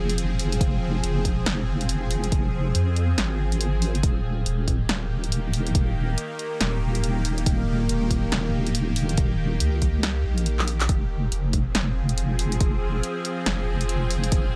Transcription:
0.00 0.59 F1 loud
0.00 3.99 F3 medium
0.00 4.00 C4 medium
0.00 4.00 G#4 medium
0.10 closed hi-hat medium
0.18 closed hi-hat medium
0.40 open hi-hat medium
0.52 closed hi-hat medium
0.61 1.02 F1 loud
0.61 kick loud
0.61 closed hi-hat medium
1.04 1.45 F1 loud
1.04 closed hi-hat medium
1.25 kick medium
1.25 closed hi-hat medium
1.46 2.31 F1 loud
1.46 snare loud
1.46 closed hi-hat medium
1.81 closed hi-hat medium
1.89 closed hi-hat medium
2.11 open hi-hat medium
2.24 closed hi-hat medium
2.32 2.74 F1 medium
2.32 kick loud
2.32 closed hi-hat medium
2.75 3.16 F2 loud
2.75 closed hi-hat medium
2.96 closed hi-hat medium
3.18 4.02 G#1 loud
3.18 snare loud
3.18 closed hi-hat medium
3.52 closed hi-hat medium
3.61 closed hi-hat medium
3.82 open hi-hat medium
3.95 closed hi-hat medium
4.03 4.45 D#1 loud
4.03 10.85 D#3 medium
4.03 10.85 A#3 medium
4.03 10.85 G4 loud
4.03 kick loud
4.03 closed hi-hat medium
4.46 4.88 D#1 loud
4.46 closed hi-hat medium
4.68 kick medium
4.68 closed hi-hat medium
4.89 5.74 D#1 loud
4.89 snare loud
4.89 closed hi-hat medium
5.24 closed hi-hat medium
5.32 closed hi-hat medium
5.54 open hi-hat medium
5.67 closed hi-hat medium
5.75 6.16 D#1 loud
5.75 kick loud
5.75 closed hi-hat medium
6.18 closed hi-hat medium
6.39 closed hi-hat medium
6.61 7.45 D#1 loud
6.61 snare loud
6.61 closed hi-hat medium
6.95 closed hi-hat medium
7.04 closed hi-hat medium
7.25 open hi-hat medium
7.38 closed hi-hat medium
7.46 7.88 D#1 loud
7.46 kick loud
7.46 closed hi-hat medium
7.89 8.31 D#1 loud
7.89 closed hi-hat medium
8.11 kick medium
8.11 closed hi-hat medium
8.32 9.16 D#1 loud
8.32 snare loud
8.32 closed hi-hat medium
8.67 closed hi-hat medium
8.75 closed hi-hat medium
8.96 open hi-hat loud
9.09 closed hi-hat medium
9.18 9.59 D#1 loud
9.18 kick loud
9.18 closed hi-hat medium
9.60 10.24 C#2 loud
9.60 closed hi-hat medium
9.82 kick medium
9.82 closed hi-hat medium
10.03 snare loud
10.03 closed hi-hat medium
10.25 10.88 A#1 loud
10.38 closed hi-hat medium
10.46 closed hi-hat medium
10.59 clap medium
10.68 open hi-hat loud
10.80 clap loud
10.80 closed hi-hat medium
10.89 11.31 F1 loud
10.89 14.56 F3 medium
10.89 14.56 C4 medium
10.89 14.56 G#4 medium
10.89 kick loud
10.89 closed hi-hat medium
11.32 11.74 F1 loud
11.32 closed hi-hat medium
11.53 kick medium
11.53 closed hi-hat medium
11.75 12.59 F1 loud
11.75 snare loud
11.75 closed hi-hat medium
12.09 closed hi-hat medium
12.18 closed hi-hat medium
12.39 open hi-hat medium
12.52 closed hi-hat medium
12.61 13.02 F1 loud
12.61 kick loud
12.61 closed hi-hat medium
13.03 closed hi-hat medium
13.25 closed hi-hat medium
13.46 14.31 F1 loud
13.46 snare loud
13.46 closed hi-hat medium
13.81 closed hi-hat medium
13.89 closed hi-hat medium
14.11 open hi-hat medium
14.24 closed hi-hat medium
14.32 14.56 F1 loud
14.32 kick loud
14.32 closed hi-hat medium

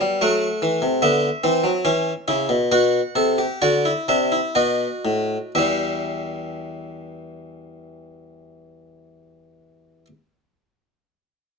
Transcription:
0.00 0.20 G3 medium
0.00 0.19 B3 medium
0.00 0.19 D5 medium
0.21 0.46 F#3 loud
0.21 1.00 A3 medium
0.21 1.00 F#5 medium
0.62 0.82 E3 loud
0.82 1.02 C3 loud
1.02 1.28 D3 loud
1.02 1.28 B3 medium
1.02 2.68 E5 medium
1.44 1.64 E3 medium
1.44 1.70 C4 medium
1.64 1.84 F#3 medium
1.85 2.11 E3 loud
1.85 2.11 C#4 medium
2.28 2.49 C#3 loud
2.28 2.55 E4 medium
2.49 2.70 B2 medium
2.72 2.99 B2 medium
2.72 2.99 F#4 loud
2.72 3.59 F#5 medium
3.15 3.44 C3 medium
3.15 3.38 A4 medium
3.38 3.61 G4 medium
3.62 3.91 D3 medium
3.62 3.84 F#4 medium
3.62 3.91 D5 medium
3.85 4.08 E4 medium
4.08 4.38 C3 medium
4.08 4.31 D4 medium
4.08 4.38 E5 medium
4.32 4.55 E4 medium
4.55 4.86 B2 medium
4.55 5.51 F#4 medium
4.55 5.52 D#5 medium
5.05 5.36 A2 medium
5.55 10.05 E2 medium
5.55 10.07 E3 medium
5.55 10.07 G3 medium
5.55 10.05 G4 medium
5.55 10.05 E5 medium

